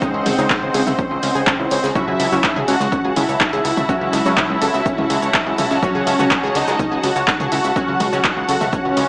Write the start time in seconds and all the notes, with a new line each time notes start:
Already playing: E3 C4 C5 D#5 F#5
0.01 C#3 G#3 C#4 D#4, kick, shaker
0.14 C#2 C#4
0.26 G#1 G#3, snare, mid tom, open hi-hat, shaker
0.38 C#2 C#3 G#3 D#4 C#5, snare, shaker
0.50 D#4, kick, snare, clap, shaker
0.63 C#2 G#3
0.74 C#2 G#4, open hi-hat, shaker
0.87 C#2 E5, snare, mid tom, shaker
0.98 C#4, kick, shaker
1.11 C#2 C#4
1.23 C#2 C#4, open hi-hat, shaker
1.35 C#2 G#4, shaker
1.47 C#4, kick, snare, clap, mid tom, shaker
1.59 C#2 E4
1.71 C#2 C#5, open hi-hat, shaker
1.84 C#2 G#4, snare, shaker
1.95 F#3 C#4 E4 F#4 E5 F#5 A5, kick, mid tom, shaker
2.08 C#2 G#4
2.20 C#2 E5, open hi-hat, shaker
2.32 C#2 F#3 C#4 F#4 C#5, shaker
2.43 D#4, kick, snare, clap, shaker
2.56 C#2 G#4, mid tom
2.68 C#2 C#4 F#4 F#5, snare, open hi-hat, shaker
2.80 C#2 G#3, snare, shaker
2.92 C#4, kick, shaker
3.05 C#2 G#4
3.16 C#2 C#4 E4 E5, mid tom, open hi-hat, shaker
3.29 C#2 C#5, shaker
3.40 D#4, kick, snare, clap, shaker
3.53 C#2 G#4, closed hi-hat
3.65 C#2 E4, open hi-hat, shaker
3.77 C#2 E5, mid tom, shaker
3.89 F#3 C#4 F#4, kick, shaker
4.01 C#2 C#4
4.13 C#2 G#3, snare, open hi-hat, shaker
4.25 C#2 F#3 C#4 F#4 C#5, snare, shaker
4.37 D#4, kick, snare, clap, mid tom, shaker
4.50 C#2 G#3
4.62 C#2 A4, open hi-hat, shaker
4.74 C#2 E5, snare, shaker
4.86 C#4, kick, shaker
4.98 C#2 C#4, mid tom
5.10 C#2 G#3, open hi-hat, shaker
5.22 C#2 C#5, shaker
5.34 D#4, kick, snare, clap, shaker
5.47 C#2 G#3
5.58 C#2 C#4, mid tom, open hi-hat, shaker
5.71 C#2 C#4, snare, shaker
5.82 F#3 C#4 F#4 C#5, kick, shaker
5.95 C#2 G#4
6.07 C#2 E5, open hi-hat, shaker
6.19 C#2 F#3 C#4 F#4 C#5, mid tom, shaker
6.30 D#4, kick, snare, clap, shaker
6.43 C#2 G#4
6.55 C#2 C#4 D#4 D#5, snare, open hi-hat, shaker
6.67 C#2 G#3, snare, shaker
6.79 C#4, kick, mid tom, shaker
6.92 C#2 G#4
7.03 C#2 C#4 F#4 F#5, open hi-hat, shaker
7.16 C#2 C#5, shaker
7.28 D#4, kick, snare, clap, shaker
7.40 C#2 G#4, closed hi-hat, mid tom
7.52 C#2 E4, open hi-hat, shaker
7.64 C#2 E5, shaker
7.76 F#3 C#4 F#4, kick, shaker
7.88 C#2 C#4
8.00 C#2 G#3, snare, mid tom, open hi-hat, shaker
8.13 C#2 F#3 C#4 F#4 C#5, snare, shaker
8.24 D#4, kick, snare, clap, shaker
8.37 C#2 G#3
8.48 C#2 A4, open hi-hat, shaker
8.61 C#2 E5, snare, mid tom, shaker
8.72 C#4, kick, swell, shaker
8.85 C#2 C#4
8.97 C#2 G#3, open hi-hat, shaker